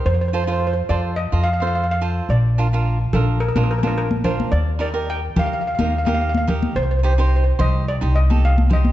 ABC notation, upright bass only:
X:1
M:4/4
L:1/16
Q:"Swing 16ths" 1/4=107
K:Bb
V:1 name="Upright bass" clef=bass
F,,6 F,,3 F,,6- F,, | B,,,6 B,,,3 B,,,6- B,,, | E,,6 E,,3 E,,6- E,, | C,,6 C,,3 C,,6- C,, |]